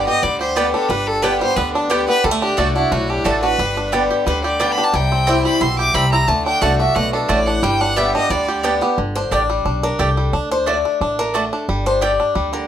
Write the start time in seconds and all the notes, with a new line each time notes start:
Already playing: G2 G3 D4
0.07 B3 G4 D#5
0.23 D2 D3 G3 D5
0.41 G4 C5
0.56 D3 G3 B3 G4 B4 D5 G5
0.73 D4 A4
0.88 G1 G2 G3 B4
1.07 A4
1.22 D3 G3 B3 D4 G4 B4 D5 G5
1.40 G3 B3 G4 C5
1.56 D2 D3 B3 B4
1.74 D4
1.90 D3 G3 B3 G4 D5 G5
2.08 B3 G4 B4
2.24 D2 D3 G3 A4
2.31 A3
2.41 D4 G4
2.57 C2 D3 A3 D4 F#4 D5 A5
2.75 D4 E4 F#4
2.91 B1 A2 A3 F#4
3.09 D4 G4
3.24 A1 D3 A3 D4 F#4 A4 D5 A5
3.42 D4 F#4 B4
3.58 G1 G2 G3
3.77 D4
3.92 D3 G3 B3 G4 D5 G5
4.11 G4
4.26 D2 D3 G3 B4
4.44 G4 D5
4.59 D3 G3 B3 G4 D5 G5
4.72 B5
4.78 B3 D4 G4
4.84 A5
4.93 C2 C3 G3 G5
5.12 C4
5.27 E3 G3 C4 E4 G4 C5 G5
5.45 G3 B5
5.61 B1 B2 E4 C6
5.79 G4 D6
5.94 C2 C3 G3 C4 E4 C5 G5 B5
6.12 E4 A#5
6.28 D2 D3 A3 A5
6.45 D4 G5
6.61 C2 D3 A3 D4 F#4 D5 F#5 A5
6.78 D4 F#4 E5
6.95 B1 B2 A3 F#5
7.13 D4 A4
7.28 A1 A2 A3 F#4 D5 A5
7.46 D4 F#5
7.63 G1 G2 G3 G5
7.81 D4 F#5
7.96 D3 G3 B3 G4 D5 E5 G5
8.14 B3 D4 G4 D#5
8.30 D2 D3 G3 D5
8.48 G4
8.63 D3 G3 B3 D4 G4 D5 G5
8.81 B3 G4
8.98 G1 D3
9.15 D4 C5
9.31 A1 A3 D4 G4 D5 G5
9.50 G3
9.65 B1 D4
9.83 D4 A#4
9.99 C2 A3 G4 A4 D5 G5
10.17 G3
10.33 D2 D4
10.51 D4 C5
10.66 A3 F#4 D5 A5
10.85 D4
11.01 A1 D4
11.19 D4 A#4
11.34 A3 F#4 A4 D5 A5
11.53 D4
11.69 G1 G3
11.86 D4 C5
12.01 A3 G4 D5 G5
12.20 D4
12.35 D2 G3
12.53 D3 A#4